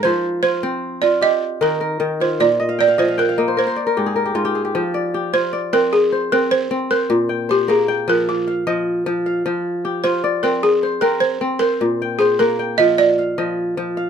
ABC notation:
X:1
M:12/8
L:1/16
Q:3/8=102
K:Fdor
V:1 name="Balafon"
c4 c6 d2 e4 B6 c2 | d4 d2 c2 B4 c8- c2 z2 | z6 c4 B2 A4 B2 c4 B2- | B4 G2 A4 B2 F4 z8 |
z6 c4 B2 A4 B2 c4 B2- | B4 A2 B4 e2 d4 z8 |]
V:2 name="Kora"
[Bc]4 F2 c6 G4 B2 B4 F2- | F2 e f g f e f g f e c B c d B G A B G F G A G- | G z d2 G4 d6 c6 z2 c2- | c2 g2 c4 g6 f2 e6 f2- |
f2 z2 G4 d6 c2 B6 c2- | c2 g2 c4 g6 f2 e6 f2 |]
V:3 name="Kora" clef=bass
F,4 z2 C4 F2 z4 E,4 E,4 | B,,4 z2 F,4 B,2 z4 A,,4 A,,4 | F,4 z2 F4 C4 z2 C4 C4 | B,,4 z2 B,4 F,4 z2 F,4 F,4 |
F,4 z2 F4 C4 z2 C4 C4 | B,,4 z2 B,4 F,4 z2 F,4 F,4 |]